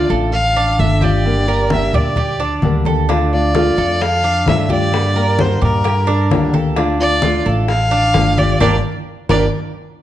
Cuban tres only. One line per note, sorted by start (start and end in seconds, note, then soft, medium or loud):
0.10 0.55 A4 medium
0.56 1.01 D4 medium
1.02 1.47 G4 medium
1.48 1.93 A#4 medium
1.94 2.16 D5 medium
2.17 2.39 G4 medium
2.40 2.85 D4 medium
2.86 3.08 A4 medium
3.09 3.54 D4 medium
3.55 3.77 F4 medium
3.78 4.23 A4 medium
4.24 4.69 D4 medium
4.70 5.14 G4 medium
5.16 5.60 A#4 medium
5.62 5.84 D5 medium
5.84 6.07 G4 medium
6.07 6.52 D4 medium
6.54 6.76 A4 medium
6.77 7.21 D4 medium
7.23 7.45 F4 medium
7.46 7.90 A4 medium
7.91 8.36 D4 medium
8.38 8.60 G4 medium
8.61 8.76 D4 loud
8.61 8.75 G4 medium
8.61 8.75 A#4 medium
9.29 9.44 D4 medium
9.29 9.45 G4 medium
9.29 9.44 A#4 medium